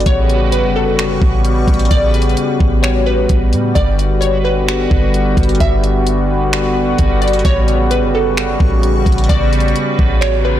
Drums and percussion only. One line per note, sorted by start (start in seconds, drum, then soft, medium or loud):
0.00 closed hi-hat medium
0.06 kick loud
0.06 closed hi-hat medium
0.29 closed hi-hat medium
0.52 closed hi-hat medium
0.99 finger snap loud
0.99 closed hi-hat medium
1.22 kick loud
1.45 closed hi-hat medium
1.68 kick medium
1.68 closed hi-hat medium
1.74 closed hi-hat medium
1.79 closed hi-hat medium
1.85 closed hi-hat medium
1.91 kick loud
1.91 closed hi-hat medium
2.14 closed hi-hat medium
2.22 closed hi-hat soft
2.29 closed hi-hat soft
2.37 closed hi-hat medium
2.60 kick medium
2.84 finger snap loud
2.84 closed hi-hat medium
3.29 kick medium
3.29 closed hi-hat medium
3.53 closed hi-hat medium
3.76 kick loud
3.76 closed hi-hat medium
3.99 closed hi-hat medium
4.22 closed hi-hat medium
4.68 finger snap loud
4.68 closed hi-hat medium
4.91 kick loud
5.14 closed hi-hat medium
5.37 kick medium
5.37 closed hi-hat medium
5.43 closed hi-hat medium
5.49 closed hi-hat medium
5.55 closed hi-hat medium
5.60 kick loud
5.60 closed hi-hat medium
5.84 closed hi-hat medium
6.07 closed hi-hat medium
6.53 finger snap loud
6.53 closed hi-hat medium
6.98 kick medium
6.98 closed hi-hat medium
7.22 closed hi-hat medium
7.28 closed hi-hat medium
7.33 closed hi-hat medium
7.39 closed hi-hat medium
7.45 kick loud
7.45 closed hi-hat medium
7.68 closed hi-hat medium
7.91 closed hi-hat medium
8.37 finger snap loud
8.37 closed hi-hat medium
8.60 kick loud
8.83 closed hi-hat medium
9.06 kick medium
9.06 closed hi-hat medium
9.12 closed hi-hat medium
9.18 closed hi-hat medium
9.24 closed hi-hat medium
9.29 kick loud
9.29 closed hi-hat medium
9.53 closed hi-hat medium
9.60 closed hi-hat soft
9.68 closed hi-hat soft
9.76 closed hi-hat medium
9.99 kick medium
10.22 finger snap loud
10.22 closed hi-hat medium